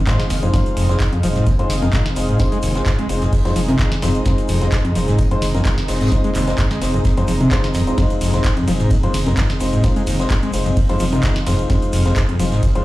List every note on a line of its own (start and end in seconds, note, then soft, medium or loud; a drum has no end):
0.00 12.85 C4 medium
0.00 12.85 G#4 medium
0.00 12.85 D#5 medium
0.00 2.22 F5 medium
0.07 0.17 G#2 medium
0.07 0.21 G#3 loud
0.07 0.21 D#4 medium
0.07 0.21 F4 medium
0.07 0.21 C5 loud
0.07 kick loud
0.07 snare loud
0.07 clap loud
0.07 closed hi-hat medium
0.07 tambourine medium
0.07 shaker medium
0.20 snare medium
0.20 closed hi-hat soft
0.30 0.49 F1 medium
0.30 0.37 D#2 medium
0.30 snare medium
0.30 open hi-hat loud
0.30 tambourine medium
0.30 shaker medium
0.43 0.49 F2 medium
0.43 0.52 G#3 medium
0.43 0.52 D#4 medium
0.43 0.52 F4 medium
0.43 0.52 C5 loud
0.43 closed hi-hat soft
0.43 shaker soft
0.54 0.61 F2 medium
0.54 0.86 G#3 medium
0.54 0.86 D#4 medium
0.54 0.86 F4 medium
0.54 0.86 C5 medium
0.54 kick loud
0.54 snare medium
0.54 closed hi-hat medium
0.54 tambourine medium
0.54 high conga medium
0.54 shaker soft
0.66 closed hi-hat soft
0.66 shaker soft
0.77 0.95 F1 loud
0.77 0.87 F2 medium
0.77 open hi-hat loud
0.77 tambourine medium
0.77 shaker medium
0.89 0.95 F2 medium
0.89 1.02 G#3 medium
0.89 1.02 D#4 medium
0.89 1.02 F4 medium
0.89 1.02 C5 loud
0.89 snare medium
0.89 closed hi-hat soft
0.89 shaker soft
1.00 kick loud
1.00 snare loud
1.00 clap loud
1.00 closed hi-hat medium
1.00 tambourine medium
1.00 shaker soft
1.13 1.21 F1 medium
1.13 1.22 F2 medium
1.13 closed hi-hat soft
1.13 high conga soft
1.23 1.42 F1 medium
1.23 1.27 F3 loud
1.23 1.45 G#3 medium
1.23 1.45 D#4 medium
1.23 1.45 F4 medium
1.23 1.45 C5 medium
1.23 open hi-hat loud
1.23 tambourine medium
1.23 shaker loud
1.35 1.45 G#2 medium
1.35 snare soft
1.35 closed hi-hat soft
1.35 shaker soft
1.46 1.53 D#2 medium
1.46 kick loud
1.46 closed hi-hat medium
1.46 tambourine medium
1.46 shaker medium
1.59 1.63 F2 medium
1.59 1.72 G#3 medium
1.59 1.72 D#4 medium
1.59 1.72 F4 medium
1.59 1.72 C5 loud
1.59 closed hi-hat soft
1.70 1.88 F1 loud
1.70 snare medium
1.70 open hi-hat loud
1.70 tambourine medium
1.70 shaker loud
1.82 1.88 F2 medium
1.82 2.03 G#3 medium
1.82 2.03 D#4 medium
1.82 2.03 F4 medium
1.82 2.03 A#4 medium
1.82 snare soft
1.82 closed hi-hat soft
1.82 high conga medium
1.82 shaker soft
1.93 1.97 G#2 medium
1.93 kick loud
1.93 snare loud
1.93 clap loud
1.93 closed hi-hat medium
1.93 tambourine medium
1.93 shaker medium
2.06 snare medium
2.06 snare soft
2.06 closed hi-hat soft
2.16 2.35 F1 medium
2.16 2.36 G#3 medium
2.16 2.36 D#4 medium
2.16 2.36 F4 medium
2.16 2.36 C5 medium
2.16 9.66 A#5 medium
2.16 open hi-hat medium
2.16 tambourine medium
2.16 shaker medium
2.29 2.38 G#2 medium
2.29 closed hi-hat soft
2.29 shaker soft
2.39 2.72 G#3 medium
2.39 2.72 D#4 medium
2.39 2.72 F4 medium
2.39 2.72 C5 medium
2.39 kick loud
2.39 snare medium
2.39 closed hi-hat medium
2.39 tambourine medium
2.39 high conga medium
2.39 shaker soft
2.52 2.58 G#3 loud
2.52 closed hi-hat soft
2.52 shaker soft
2.62 2.81 F1 loud
2.62 2.73 D#2 medium
2.62 open hi-hat loud
2.62 tambourine medium
2.62 shaker loud
2.75 2.88 G#3 medium
2.75 2.88 D#4 medium
2.75 2.88 F4 medium
2.75 2.88 C5 loud
2.75 snare medium
2.75 closed hi-hat soft
2.75 shaker soft
2.86 2.90 G#2 medium
2.86 kick loud
2.86 snare loud
2.86 clap loud
2.86 closed hi-hat medium
2.86 tambourine medium
2.86 shaker soft
2.99 3.07 F1 medium
2.99 3.08 G#3 medium
2.99 closed hi-hat soft
2.99 high conga soft
3.09 3.28 F1 medium
3.09 3.31 G#3 medium
3.09 3.31 D#4 medium
3.09 3.31 F4 medium
3.09 3.31 C5 medium
3.09 open hi-hat medium
3.09 tambourine medium
3.09 shaker medium
3.22 3.26 F2 medium
3.22 snare medium
3.22 closed hi-hat soft
3.22 shaker soft
3.33 kick loud
3.33 closed hi-hat medium
3.33 open hi-hat medium
3.33 shaker medium
3.45 3.51 F2 medium
3.45 3.58 G#3 loud
3.45 3.58 D#4 medium
3.45 3.58 F4 medium
3.45 3.58 C5 loud
3.45 snare soft
3.45 closed hi-hat soft
3.56 3.74 F1 loud
3.56 3.60 F3 medium
3.56 open hi-hat loud
3.56 tambourine medium
3.56 shaker medium
3.68 3.77 C3 loud
3.68 3.90 G#3 medium
3.68 3.90 D#4 medium
3.68 3.90 F4 medium
3.68 3.90 A#4 medium
3.68 closed hi-hat soft
3.68 high conga medium
3.68 shaker soft
3.79 kick loud
3.79 clap loud
3.79 closed hi-hat medium
3.79 tambourine medium
3.79 shaker medium
3.92 snare medium
3.92 snare soft
3.92 closed hi-hat soft
4.02 4.21 F1 medium
4.02 4.09 F2 medium
4.02 4.22 G#3 medium
4.02 4.22 D#4 medium
4.02 4.22 F4 medium
4.02 4.22 C5 medium
4.02 snare medium
4.02 snare loud
4.02 open hi-hat medium
4.02 tambourine medium
4.02 shaker medium
4.15 closed hi-hat soft
4.15 shaker soft
4.25 4.33 F2 medium
4.25 4.58 G#3 medium
4.25 4.58 D#4 medium
4.25 4.58 F4 medium
4.25 4.58 C5 medium
4.25 kick loud
4.25 snare medium
4.25 closed hi-hat medium
4.25 tambourine medium
4.25 high conga medium
4.25 shaker medium
4.38 closed hi-hat soft
4.38 shaker soft
4.48 4.68 F1 loud
4.48 4.59 F2 medium
4.48 open hi-hat loud
4.48 tambourine medium
4.48 shaker medium
4.61 4.67 F2 medium
4.61 4.74 G#3 medium
4.61 4.74 D#4 medium
4.61 4.74 F4 medium
4.61 4.74 C5 loud
4.61 snare medium
4.61 closed hi-hat soft
4.61 shaker soft
4.72 kick loud
4.72 snare loud
4.72 clap loud
4.72 closed hi-hat medium
4.72 tambourine medium
4.72 shaker soft
4.85 4.93 F1 medium
4.85 4.94 F2 medium
4.85 closed hi-hat soft
4.85 high conga soft
4.95 5.14 F1 medium
4.95 5.00 F3 loud
4.95 5.17 G#3 medium
4.95 5.17 D#4 medium
4.95 5.17 F4 medium
4.95 5.17 C5 medium
4.95 open hi-hat medium
4.95 tambourine medium
4.95 shaker medium
5.08 5.17 G#2 medium
5.08 snare soft
5.08 closed hi-hat soft
5.08 shaker soft
5.18 5.26 D#2 medium
5.18 kick loud
5.18 closed hi-hat medium
5.18 tambourine medium
5.18 shaker soft
5.31 5.35 F2 medium
5.31 5.44 G#3 loud
5.31 5.44 D#4 medium
5.31 5.44 F4 medium
5.31 5.44 C5 loud
5.31 closed hi-hat soft
5.42 5.61 F1 loud
5.42 snare medium
5.42 open hi-hat loud
5.42 tambourine medium
5.42 shaker medium
5.55 5.61 F2 medium
5.55 5.76 G#3 medium
5.55 5.76 D#4 medium
5.55 5.76 F4 medium
5.55 5.76 A#4 medium
5.55 snare soft
5.55 closed hi-hat soft
5.55 high conga medium
5.55 shaker soft
5.65 5.69 G#2 medium
5.65 kick loud
5.65 snare loud
5.65 clap loud
5.65 closed hi-hat medium
5.65 tambourine medium
5.65 shaker soft
5.78 snare medium
5.78 snare soft
5.78 closed hi-hat soft
5.88 6.07 F1 medium
5.88 6.09 G#3 medium
5.88 6.09 D#4 medium
5.88 6.09 F4 medium
5.88 6.09 C5 medium
5.88 snare loud
5.88 open hi-hat medium
5.88 tambourine medium
5.88 shaker medium
5.95 snare medium
5.95 tambourine medium
6.00 6.10 G#2 medium
6.00 snare medium
6.00 closed hi-hat soft
6.00 tambourine medium
6.00 shaker soft
6.07 snare medium
6.07 tambourine medium
6.11 6.45 G#3 medium
6.11 6.45 D#4 medium
6.11 6.45 F4 medium
6.11 6.45 C5 medium
6.11 kick loud
6.11 snare medium
6.11 closed hi-hat medium
6.11 high conga medium
6.11 shaker medium
6.24 6.30 G#3 loud
6.24 closed hi-hat soft
6.24 shaker soft
6.34 6.54 F1 loud
6.34 6.45 D#2 medium
6.34 clap soft
6.34 open hi-hat loud
6.34 tambourine medium
6.34 shaker loud
6.48 6.60 G#3 medium
6.48 6.60 D#4 medium
6.48 6.60 F4 medium
6.48 6.60 C5 loud
6.48 snare medium
6.48 closed hi-hat soft
6.48 shaker soft
6.58 6.62 G#2 medium
6.58 kick loud
6.58 snare loud
6.58 clap loud
6.58 closed hi-hat medium
6.58 tambourine medium
6.58 shaker medium
6.70 6.79 F1 medium
6.70 6.80 G#3 medium
6.70 snare medium
6.70 closed hi-hat soft
6.70 high conga soft
6.70 shaker soft
6.82 7.00 F1 medium
6.82 7.03 G#3 medium
6.82 7.03 D#4 medium
6.82 7.03 F4 medium
6.82 7.03 C5 medium
6.82 snare loud
6.82 open hi-hat medium
6.82 tambourine medium
6.82 shaker loud
6.94 6.98 F2 medium
6.94 closed hi-hat soft
6.94 shaker soft
7.04 kick loud
7.04 snare loud
7.04 closed hi-hat medium
7.04 tambourine medium
7.04 shaker medium
7.17 7.23 F2 medium
7.17 7.30 G#3 loud
7.17 7.30 D#4 medium
7.17 7.30 F4 medium
7.17 7.30 C5 loud
7.17 snare soft
7.17 closed hi-hat soft
7.17 shaker soft
7.27 7.47 F1 medium
7.27 7.32 F3 medium
7.27 open hi-hat loud
7.27 tambourine medium
7.27 shaker medium
7.41 7.49 C3 loud
7.41 closed hi-hat soft
7.41 high conga medium
7.41 shaker soft
7.51 7.65 G#3 loud
7.51 7.65 D#4 medium
7.51 7.65 F4 medium
7.51 7.65 C5 loud
7.51 kick loud
7.51 snare loud
7.51 clap loud
7.51 closed hi-hat medium
7.51 tambourine medium
7.51 shaker soft
7.63 snare medium
7.63 closed hi-hat soft
7.63 shaker soft
7.74 7.93 D#1 medium
7.74 7.82 F2 medium
7.74 snare medium
7.74 open hi-hat medium
7.74 tambourine medium
7.74 shaker medium
7.87 7.96 G#3 medium
7.87 7.96 D#4 medium
7.87 7.96 F4 medium
7.87 7.96 C5 loud
7.87 closed hi-hat soft
7.87 shaker soft
7.98 8.05 F2 medium
7.98 8.31 G#3 medium
7.98 8.31 D#4 medium
7.98 8.31 F4 medium
7.98 8.31 C5 medium
7.98 kick loud
7.98 snare medium
7.98 closed hi-hat medium
7.98 ride medium
7.98 tambourine medium
7.98 high conga medium
7.98 shaker medium
8.10 closed hi-hat soft
8.10 shaker soft
8.21 8.40 F1 loud
8.21 8.31 F2 medium
8.21 open hi-hat loud
8.21 ride medium
8.21 tambourine medium
8.21 shaker loud
8.34 8.40 F2 medium
8.34 8.46 G#3 medium
8.34 8.46 D#4 medium
8.34 8.46 F4 medium
8.34 8.46 C5 loud
8.34 snare medium
8.34 closed hi-hat soft
8.34 shaker soft
8.44 kick loud
8.44 snare loud
8.44 clap loud
8.44 closed hi-hat medium
8.44 ride medium
8.44 tambourine medium
8.44 shaker medium
8.57 8.65 F1 medium
8.57 8.66 F2 medium
8.57 closed hi-hat soft
8.57 high conga soft
8.68 8.86 F1 medium
8.68 8.72 F3 loud
8.68 8.89 G#3 medium
8.68 8.89 D#4 medium
8.68 8.89 F4 medium
8.68 8.89 C5 medium
8.68 open hi-hat loud
8.68 ride medium
8.68 tambourine medium
8.68 shaker medium
8.80 8.89 G#2 medium
8.80 snare soft
8.80 closed hi-hat soft
8.80 shaker soft
8.90 8.98 D#2 medium
8.90 kick loud
8.90 closed hi-hat medium
8.90 ride medium
8.90 tambourine medium
8.90 shaker medium
9.03 9.07 F2 medium
9.03 9.16 G#3 loud
9.03 9.16 D#4 medium
9.03 9.16 F4 medium
9.03 9.16 C5 loud
9.03 closed hi-hat soft
9.14 9.33 F1 loud
9.14 snare medium
9.14 open hi-hat loud
9.14 ride medium
9.14 tambourine medium
9.14 shaker medium
9.27 9.33 F2 medium
9.27 9.48 G#3 medium
9.27 9.48 D#4 medium
9.27 9.48 F4 medium
9.27 9.48 A#4 medium
9.27 snare soft
9.27 closed hi-hat soft
9.27 high conga medium
9.27 shaker soft
9.37 9.41 G#2 medium
9.37 kick loud
9.37 snare loud
9.37 clap loud
9.37 closed hi-hat medium
9.37 ride medium
9.37 tambourine medium
9.37 shaker medium
9.50 snare soft
9.50 snare medium
9.50 closed hi-hat soft
9.60 9.79 F1 medium
9.60 9.81 G#3 medium
9.60 9.81 D#4 medium
9.60 9.81 F4 medium
9.60 9.81 C5 medium
9.60 12.85 F5 medium
9.60 open hi-hat medium
9.60 ride medium
9.60 tambourine medium
9.60 shaker medium
9.73 9.82 G#2 medium
9.73 closed hi-hat soft
9.73 shaker soft
9.84 10.17 G#3 medium
9.84 10.17 D#4 medium
9.84 10.17 F4 medium
9.84 10.17 C5 medium
9.84 kick loud
9.84 snare medium
9.84 closed hi-hat medium
9.84 ride medium
9.84 tambourine medium
9.84 high conga medium
9.84 shaker soft
9.96 10.02 G#3 loud
9.96 closed hi-hat soft
9.96 shaker soft
10.06 10.26 F1 loud
10.06 10.17 D#2 medium
10.06 open hi-hat loud
10.06 ride medium
10.06 tambourine medium
10.06 shaker medium
10.18 10.32 G#3 medium
10.18 10.32 D#4 medium
10.18 10.32 F4 medium
10.18 10.32 C5 loud
10.18 snare medium
10.18 closed hi-hat soft
10.18 shaker soft
10.30 10.34 G#2 medium
10.30 kick loud
10.30 snare loud
10.30 clap loud
10.30 closed hi-hat medium
10.30 ride medium
10.30 tambourine medium
10.30 shaker medium
10.43 10.51 F1 medium
10.43 10.52 G#3 medium
10.43 closed hi-hat soft
10.43 high conga soft
10.53 10.72 F1 medium
10.53 10.75 G#3 medium
10.53 10.75 D#4 medium
10.53 10.75 F4 medium
10.53 10.75 C5 medium
10.53 open hi-hat loud
10.53 ride medium
10.53 tambourine medium
10.53 shaker loud
10.65 10.70 F2 medium
10.65 snare medium
10.65 closed hi-hat soft
10.65 shaker soft
10.77 kick loud
10.77 closed hi-hat medium
10.77 open hi-hat medium
10.77 ride medium
10.77 shaker medium
10.89 10.95 F2 medium
10.89 11.02 G#3 medium
10.89 11.02 D#4 medium
10.89 11.02 F4 medium
10.89 11.02 C5 loud
10.89 snare soft
10.89 closed hi-hat soft
10.99 11.19 F1 loud
10.99 11.04 F3 medium
10.99 open hi-hat loud
10.99 ride medium
10.99 tambourine medium
10.99 shaker loud
11.12 11.21 C3 loud
11.12 11.34 G#3 medium
11.12 11.34 D#4 medium
11.12 11.34 F4 medium
11.12 11.34 A#4 medium
11.12 closed hi-hat soft
11.12 high conga medium
11.12 shaker soft
11.22 kick loud
11.22 clap loud
11.22 closed hi-hat medium
11.22 ride medium
11.22 tambourine medium
11.22 shaker medium
11.36 snare medium
11.36 snare soft
11.36 closed hi-hat soft
11.46 11.65 F1 medium
11.46 11.53 F2 medium
11.46 11.67 G#3 medium
11.46 11.67 D#4 medium
11.46 11.67 F4 medium
11.46 11.67 C5 medium
11.46 snare loud
11.46 snare medium
11.46 open hi-hat medium
11.46 ride medium
11.46 tambourine medium
11.46 shaker medium
11.59 closed hi-hat soft
11.59 shaker soft
11.70 11.77 F2 medium
11.70 12.03 G#3 medium
11.70 12.03 D#4 medium
11.70 12.03 F4 medium
11.70 12.03 C5 medium
11.70 kick loud
11.70 snare medium
11.70 closed hi-hat medium
11.70 ride medium
11.70 tambourine medium
11.70 high conga medium
11.70 shaker medium
11.82 closed hi-hat soft
11.82 shaker soft
11.93 12.12 F1 loud
11.93 12.03 F2 medium
11.93 open hi-hat loud
11.93 ride medium
11.93 tambourine medium
11.93 shaker loud
12.06 12.12 F2 medium
12.06 12.18 G#3 medium
12.06 12.18 D#4 medium
12.06 12.18 F4 medium
12.06 12.18 C5 loud
12.06 snare medium
12.06 closed hi-hat soft
12.06 shaker soft
12.16 kick loud
12.16 snare loud
12.16 clap loud
12.16 closed hi-hat medium
12.16 ride medium
12.16 tambourine medium
12.16 shaker medium
12.29 12.37 F1 medium
12.29 12.38 F2 medium
12.29 closed hi-hat soft
12.29 high conga soft
12.40 12.58 F1 medium
12.40 12.44 F3 loud
12.40 12.61 G#3 medium
12.40 12.61 D#4 medium
12.40 12.61 F4 medium
12.40 12.61 C5 medium
12.40 open hi-hat loud
12.40 ride medium
12.40 tambourine medium
12.40 shaker loud
12.52 12.61 G#2 medium
12.52 snare soft
12.52 closed hi-hat soft
12.52 shaker soft
12.63 12.70 D#2 medium
12.63 kick loud
12.63 closed hi-hat medium
12.63 ride medium
12.63 tambourine medium
12.63 shaker medium
12.75 12.79 F2 medium
12.75 12.85 G#3 loud
12.75 12.85 D#4 medium
12.75 12.85 F4 medium
12.75 12.85 C5 loud
12.75 closed hi-hat soft